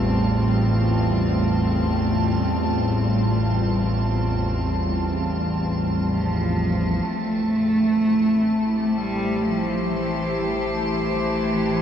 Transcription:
Already playing: A1 E2 A2 G3 C4 F4 A5
6.09 F3
7.03 A1 A3 A5
7.08 A3
7.53 E4
8.71 G4
8.91 C5
8.96 G3
9.44 F3
9.89 E3
10.87 E3

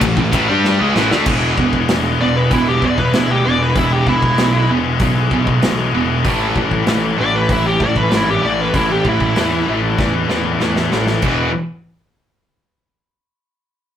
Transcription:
0.01 A1 A2 E3, kick, ride
0.17 A1 A2 E3, kick
0.32 A1 A2 E3, kick, ride
0.48 G2 G3 D4 G4
0.64 snare
0.80 C#2 C#3 G#3
0.96 A1 A2 E3, snare
1.11 D2 D3 A3, snare
1.26 E1 E2 B2 E3 G#3, kick, crash
1.35 E3 G#3
1.42 E3 G#3
1.50 E3 G#3
1.57 E1 E2 B2 E3 G#3, kick
1.65 E3 G#3
1.73 E3 G#3, kick
1.81 E3 G#3
1.88 E1 E2 B2 E3 G#3, snare, open hi-hat
1.96 E3 G#3
2.05 E3 G#3
2.12 E3 G#3
2.19 E1 E2 B2 E3 G#3 D5
2.27 E3 G#3
2.36 E3 G#3 B4
2.44 E3 G#3
2.50 E1 E2 B2 E3 G#3 E4, kick, open hi-hat
2.58 E3 G#3
2.66 E3 G#3 G4
2.74 E3 G#3
2.82 E2 B2 E3 G#3 D5, kick
2.90 E3 G#3
2.97 E3 G#3 B4, kick
3.06 E3 G#3
3.13 D2 E2 B2 E3 G#3 E4, snare, open hi-hat
3.19 E3 G#3
3.28 E3 G#3 G4
3.36 E3 G#3
3.44 E1 E2 B2 E3 G#3 D5
3.53 E3 G#3
3.59 E3 G#3 B4
3.67 E3 G#3
3.76 E1 E2 B2 E3 G#3 E4, kick, open hi-hat
3.83 E3 G#3
3.91 E3 G#3 G4
3.99 E3 G#3
4.07 E1 E2 B2 E3 G#3 E4, kick
4.16 E3 G#3
4.22 E3 G#3, kick
4.31 E3 G#3
4.38 B1 E2 B2 E3 G#3, snare, open hi-hat
4.47 E3 G#3
4.54 E3 G#3
4.61 E3 G#3
4.70 E1 E2 B2 E3 G#3
4.77 E3 G#3
4.85 E3 G#3
4.93 E3 G#3
4.99 B1 E2 B2 E3 G#3, kick, open hi-hat
5.09 E3 G#3
5.16 E3 G#3
5.24 E3 G#3
5.31 B1 E2 B2 E3 G#3, kick
5.39 E3 G#3
5.47 E3 G#3, kick
5.55 E3 G#3
5.62 B1 E2 B2 E3 G#3, snare, open hi-hat
5.71 E3 G#3
5.78 E3 G#3
5.86 E3 G#3
5.93 E1 E2 B2 E3 G#3
6.02 E3 G#3
6.09 E3 G#3
6.17 E3 G#3
6.25 A1 A2 E3 A3, kick, open hi-hat
6.33 A2 E3
6.41 A2 E3
6.48 A2 E3
6.56 A1 A2 E3, kick
6.64 A2 E3
6.71 A2 E3, kick
6.80 A2 E3
6.87 A1 A2 E3, snare, open hi-hat
6.95 A2 E3
7.03 A2 E3
7.11 A2 E3
7.18 A1 A2 E3 D5
7.26 A2 E3
7.33 A2 E3 B4
7.41 A2 E3
7.49 A1 A2 E3 E4, kick, open hi-hat
7.56 A2 E3
7.63 A2 E3 G4
7.72 A2 E3
7.79 A2 E3, kick
7.83 A2 D5
7.89 E3
7.94 A2 E3 B4, kick
8.02 A2 E3
8.10 G#1 A2 E3, snare, open hi-hat
8.16 A2 E3 E4
8.25 A2 E3
8.30 A2 G4
8.35 E3
8.40 A1 A2 E3
8.45 A2 D5
8.49 E3
8.56 A2 E3
8.61 A2 B4
8.65 E3
8.73 A1 A2 E3 E4, kick, open hi-hat
8.81 A2 E3
8.89 A2 E3 G4
8.96 A2 E3
9.03 A1 A2 E3, kick
9.09 A2 E4
9.13 E3
9.20 A2 E3, kick
9.27 A2 E3
9.35 E2 A2 E3, snare, open hi-hat
9.44 A2 E3
9.51 A2 E3
9.59 A2 E3
9.67 A1 A2 E3
9.74 A2 E3
9.82 A2 E3
9.90 A2 E3
9.98 E2 A2 E3, kick, snare
10.05 A2 E3
10.14 A2 E3
10.21 A2 E3
10.29 E2 A2 E3, snare
10.37 A2 E3
10.44 A2 E3
10.52 A2 E3
10.60 E2 A2 E3, snare
10.68 A2 E3
10.75 A2 E3, snare
10.83 A2 E3
10.91 A1 A2 E3, snare
10.98 A2 E3
11.07 A2 E3, snare
11.15 A2 E3
11.22 E1 E2 B2 E3, kick, crash

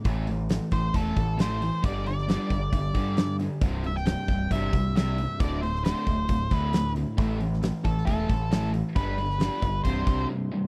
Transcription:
0.05 A1 A2 E3 A3, kick, open hi-hat
0.27 A2 E3, open hi-hat
0.49 A2 E3, snare, open hi-hat
0.71 A1 A2 E3 C5, kick, open hi-hat
0.94 E1 A2 E3 A3 A4, kick, open hi-hat
1.16 A1 A2 E3, kick, open hi-hat
1.39 A2 E3 A3 C5, snare, open hi-hat
1.61 A2 E3, open hi-hat
1.84 G1 G2 D3 G3 D5, kick, open hi-hat
2.06 G2 D3 D5, open hi-hat
2.18 snare
2.28 G2 D3 G3, snare, open hi-hat
2.50 G1 G2 D3, kick, open hi-hat
2.72 G1 G2 D3, kick, open hi-hat
2.94 G2 D3 G3, kick, open hi-hat
3.17 G2 D3, snare, open hi-hat
3.39 G2 D3, open hi-hat
3.61 C1 C2 G2 C3, kick, open hi-hat
3.84 C2 G2 E5, open hi-hat
3.96 G5, snare
4.06 C2 G2 G5, snare, open hi-hat
4.28 C1 C2 G2, kick, open hi-hat
4.51 G1 C2 G2 C3 E5, kick, open hi-hat
4.73 C2 G2, kick, open hi-hat
4.96 C2 G2 C3 E5, snare, open hi-hat
5.18 C2 G2, open hi-hat
5.40 D1 D2 A2 D3 D5, kick, open hi-hat
5.62 D2 A2 C5, open hi-hat
5.75 snare
5.84 D2 A2 D3 C5, snare, open hi-hat
6.07 D1 D2 A2, kick, open hi-hat
6.29 D1 D2 A2, kick, open hi-hat
6.51 D2 A2 D3, kick, open hi-hat
6.56 B4
6.73 D2 A2, snare, open hi-hat
6.95 D2 A2, open hi-hat
7.17 A1 A2 E3 A3, kick, open hi-hat
7.39 A2 E3, open hi-hat
7.53 snare
7.62 A2 E3, snare, open hi-hat
7.83 A1 A2 E3 A4, kick, open hi-hat
7.97 snare
8.05 E1 A2 E3 A3 A4, kick, open hi-hat
8.29 A1 A2 E3, kick, open hi-hat
8.51 A2 E3 A3, snare, open hi-hat
8.73 A2 E3, open hi-hat
8.95 G1 G2 D3 G3 B4, kick, open hi-hat
9.18 G2 D3, open hi-hat
9.30 snare
9.38 G2 D3 G3, snare, open hi-hat
9.62 G1 G2 D3, kick, open hi-hat
9.84 C1 C2 G2 C3 C5, kick, open hi-hat
10.06 C2 G2 C3, kick, open hi-hat
10.28 C2 G2
10.51 C2 G2

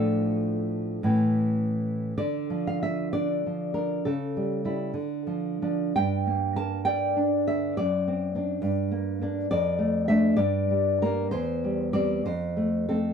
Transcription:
Already playing: A2 F3 D4 F4 A4
1.03 A2 E3 C#4
2.18 D3 D5
2.50 F3
2.67 F5
2.83 F4 E5
3.13 D4 D5
3.46 F3
3.74 D4 A#4
4.05 C#3 A4
4.37 G3
4.65 G3 E4
4.94 D3
5.27 F3
5.62 F3 D4
5.96 G2 G5
6.27 A#3
6.56 A#4 A5
6.85 D5 G5
7.17 D4
7.47 D3 E5
7.77 F#2 D5
8.08 C4
8.35 C4 D4
8.62 G2
8.91 A#3
9.21 A#3 D4
9.51 F2 D5
9.79 A3
10.08 A3 D4 E5
10.37 G2 D5
10.70 G3
11.02 G3 A#3 A#4
11.31 E2 C5
11.64 G3
11.93 G3 C4 D5
12.26 F2 C5
12.57 A3
12.89 A3 C4 A4

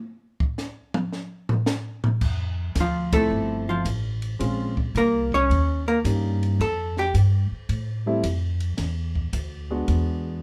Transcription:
0.40 kick
0.58 snare, hi-hat pedal
0.94 mid tom
1.13 snare
1.49 floor tom
1.66 snare, hi-hat pedal
2.04 floor tom
2.21 F2, kick, crash
2.75 D2, kick, snare, hi-hat pedal, ride
2.80 F3 F4
3.13 F3 A3 C4 E4 A4, kick, ride
3.31 G1
3.69 F3 F4
3.85 A1, kick, hi-hat pedal, ride
4.22 ride
4.39 A#1 G#3 C4 C#4 F4, kick, ride
4.77 kick
4.95 C2 A#3 A#4, kick, hi-hat pedal, ride
5.32 C#4 C#5, kick
5.50 D#2, kick, ride
5.88 A#3 A#4
6.04 G2 G3 A#3 C#4 D#4, kick, hi-hat pedal, ride
6.43 ride
6.60 F2 A4, kick, ride
6.97 G4, snare
7.14 G2, kick, hi-hat pedal, ride
7.51 muted upright bass stroke
7.69 A2, kick, ride
8.06 G3 A3 C4 E4
8.24 F2, kick, hi-hat pedal, ride
8.60 ride
8.77 E2, kick, snare, ride
9.15 kick
9.33 D2, kick, hi-hat pedal, ride
9.70 G#3 B3 D4 F#4
9.88 E2, kick, ride

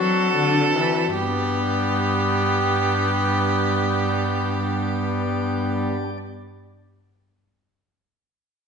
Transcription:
Already playing: C4 D4 F#4
0.00 F#3 F#4 A4
0.36 D3
0.75 E3
1.13 G2 G3 B3 G4
1.21 B3
1.28 D4
1.35 G4
1.42 D5

